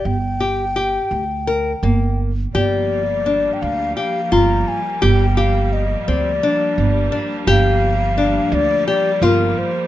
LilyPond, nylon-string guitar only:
\new Staff \with { instrumentName = "Nylon-string guitar" } { \time 7/8 \key g \minor \tempo 4 = 85 g'8 g'8 g'4 bes'8 bes4 | g'4 d'4 g'8 f'4 | g'8 g'4 c'8 d'4 d'8 | g'4 d'4 g'8 f'4 | }